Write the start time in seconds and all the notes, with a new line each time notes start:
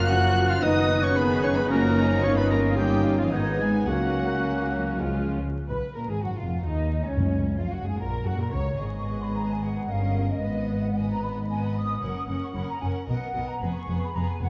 Already playing: F#1 A#3 F#4 F#6
0.08 F3 A#3 C#4 F#4 F#5 F#6
0.49 F4 F5 F6
0.62 F#1 D#3 B3 D#4 F#4 D#5 D#6
1.02 C#4 C#5 C#6
1.16 D#3 B3 G#4 B4 B5
1.43 C#4 C#5 C#6
1.56 B3 B4 B5
1.68 F#1 F3 A#3 C#4 F#4 A#4 A#5
1.98 C#4
2.22 G1 A#3 C#4 D#4 F4 C#5 C#6 D#6
2.37 B3 B4 B5
2.50 A#3 A#4 A#5
2.77 D#3 G3 A#3 C#4 D#4 G4 G5
3.18 F3 F4 F5
3.31 G#1 D#3 G#3 B3 D#4 D#5 G#6
3.60 G#3 G#4 G#5
3.87 C#2 F#3 A#3 C#4 F#4 F#5 F#6
4.99 C#2 F3 G#3 C#4 F4 F6
5.68 B1 B2 B4 B5
5.96 A#2 A#4 A#5
6.09 G#1 G#2 G#4 G#5
6.23 F#2 F#4 F#5
6.36 F1 F2 F4 F5
6.63 D#2 D#4 D#5
7.04 C#2 C#4 C#5
7.17 F#2
7.58 F2 F4 F5
7.70 F#1 F#2 F#4 F#5
7.84 G#2 G#4 G#5
7.98 A#1 A#2 A#4 A#5
8.24 F#1 F#2 F#4 F#5
8.37 A#2 A#4
8.41 A#5
8.51 C#2 C#3 C#5 C#6
8.79 G#1 G#2 B3 G#4 D#5
8.95 C#6
9.22 B5
9.35 A#5
9.49 G#5
9.62 F#5
9.88 G1 G2 C#4 A#4 D#5 F5
10.29 D#5
10.41 G#1 G#2 B3 B4 D#5
10.83 F#5
10.95 B3 B4 D#5 G#5
11.11 A#5
11.23 B5
11.47 B3 B4 D#5 G#5
11.64 B5
11.76 D#6
12.00 F#1 F#2 C#4 A#4 F#5
12.16 D#6
12.27 F#1 F#2 C#4 A#4 F#5
12.42 C#6
12.53 F#1 F#2 C#4 A#4 F#5 B5
12.69 A#5
12.80 F#1 F#2 C#4 A#4 F#5 G#5
13.07 B1 B2 B3 A#4 D#5 F#5
13.34 B1 B2 B3 A#4 D#5
13.47 A#5
13.61 F1 F2 B3 G#4 B4
13.73 C#6
13.87 F1 F2 B3 G#4 B4
14.03 B5
14.13 F1 F2 B3 G#4 B4 A#5
14.30 G#5
14.40 F1 F2 B3 G#4 B4 F#5